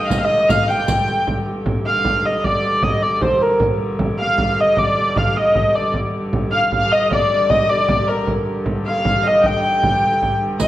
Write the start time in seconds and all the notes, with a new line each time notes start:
Already playing: G2 D3 D#5
0.06 F5
0.10 D#5, riq, frame drum
0.18 F5
0.24 D#5
0.49 F5, riq, frame drum
0.68 G5, riq
0.88 riq, frame drum
1.07 riq, frame drum
1.27 G2 D3, frame drum
1.66 frame drum
1.86 F5
2.05 frame drum
2.26 D#5
2.44 D5, frame drum
2.82 D#5, frame drum
3.02 D5
3.21 C5, frame drum
3.42 A#4
3.60 frame drum
3.99 frame drum
4.20 F5
4.38 frame drum
4.60 D#5
4.77 D5, frame drum
5.16 F5, frame drum
5.37 D#5
5.55 frame drum
5.74 D5, frame drum
5.94 G2 D3, frame drum
6.33 frame drum
6.52 F5
6.72 F5, frame drum
6.91 D#5
7.11 D5, frame drum
7.49 D#5, frame drum
7.69 D5
7.88 frame drum
8.08 A#4
8.27 frame drum
8.66 frame drum
8.86 F5
9.05 frame drum
9.23 D#5
9.42 G5, frame drum
9.64 frame drum
9.83 frame drum
10.03 frame drum
10.22 frame drum
10.59 G2 D3 D#5, riq, frame drum